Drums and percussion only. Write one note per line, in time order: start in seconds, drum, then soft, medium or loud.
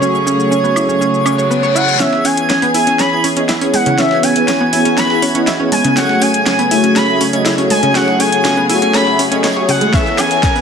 0.03 shaker soft
0.15 shaker soft
0.27 shaker medium
0.40 shaker soft
0.52 shaker soft
0.65 shaker soft
0.76 high woodblock medium
0.76 shaker medium
0.89 shaker soft
1.02 shaker soft
1.14 shaker soft
1.26 high woodblock medium
1.26 shaker medium
1.39 shaker soft
1.51 shaker soft
1.64 shaker soft
1.76 shaker medium
1.89 shaker soft
2.00 snare soft
2.00 closed hi-hat soft
2.00 tambourine medium
2.13 snare soft
2.25 open hi-hat loud
2.25 tambourine medium
2.37 closed hi-hat medium
2.50 snare soft
2.50 snare loud
2.50 closed hi-hat medium
2.50 tambourine medium
2.62 closed hi-hat soft
2.74 open hi-hat loud
2.74 tambourine medium
2.87 closed hi-hat medium
2.99 snare soft
2.99 closed hi-hat medium
2.99 tambourine medium
3.24 open hi-hat loud
3.24 tambourine medium
3.37 closed hi-hat medium
3.49 snare loud
3.49 snare soft
3.49 closed hi-hat soft
3.49 tambourine medium
3.61 closed hi-hat soft
3.74 open hi-hat loud
3.74 tambourine medium
3.86 closed hi-hat medium
3.98 snare soft
3.98 closed hi-hat soft
3.98 tambourine medium
4.11 snare soft
4.23 open hi-hat loud
4.23 tambourine medium
4.36 closed hi-hat medium
4.48 snare medium
4.48 snare loud
4.48 closed hi-hat medium
4.48 tambourine medium
4.73 open hi-hat loud
4.73 tambourine medium
4.85 closed hi-hat medium
4.98 snare medium
4.98 closed hi-hat soft
4.98 tambourine medium
5.10 snare soft
5.22 open hi-hat loud
5.22 tambourine medium
5.35 closed hi-hat medium
5.47 snare medium
5.47 snare loud
5.47 closed hi-hat soft
5.47 tambourine medium
5.72 open hi-hat loud
5.72 tambourine medium
5.84 closed hi-hat medium
5.97 snare medium
5.97 closed hi-hat soft
5.97 tambourine medium
6.09 snare soft
6.22 open hi-hat loud
6.22 tambourine medium
6.34 closed hi-hat medium
6.46 snare loud
6.46 snare medium
6.46 closed hi-hat soft
6.46 tambourine medium
6.59 closed hi-hat soft
6.71 open hi-hat loud
6.71 tambourine medium
6.84 closed hi-hat medium
6.96 snare medium
6.96 closed hi-hat soft
6.96 tambourine medium
7.21 open hi-hat loud
7.21 tambourine medium
7.33 closed hi-hat medium
7.46 snare medium
7.46 snare loud
7.46 closed hi-hat soft
7.46 tambourine medium
7.58 closed hi-hat soft
7.70 open hi-hat loud
7.70 tambourine medium
7.83 closed hi-hat medium
7.95 snare medium
7.95 closed hi-hat soft
7.95 tambourine medium
8.08 snare soft
8.20 open hi-hat loud
8.20 tambourine medium
8.32 closed hi-hat medium
8.45 snare medium
8.45 snare loud
8.45 closed hi-hat soft
8.45 tambourine medium
8.69 open hi-hat loud
8.69 tambourine medium
8.82 closed hi-hat medium
8.94 snare medium
8.94 closed hi-hat soft
8.94 tambourine medium
9.07 snare medium
9.19 open hi-hat loud
9.19 tambourine medium
9.32 closed hi-hat medium
9.44 snare medium
9.44 snare loud
9.44 closed hi-hat soft
9.44 tambourine medium
9.69 open hi-hat loud
9.69 tambourine medium
9.81 closed hi-hat medium
9.93 kick loud
9.93 snare medium
9.93 closed hi-hat soft
9.93 tambourine medium
9.93 shaker soft
10.06 snare soft
10.06 shaker soft
10.18 snare medium
10.18 open hi-hat loud
10.18 tambourine medium
10.18 high woodblock medium
10.18 shaker medium
10.31 closed hi-hat medium
10.31 shaker soft
10.43 kick loud
10.43 snare medium
10.43 snare loud
10.43 closed hi-hat medium
10.43 tambourine medium
10.43 shaker soft
10.56 closed hi-hat soft
10.56 shaker soft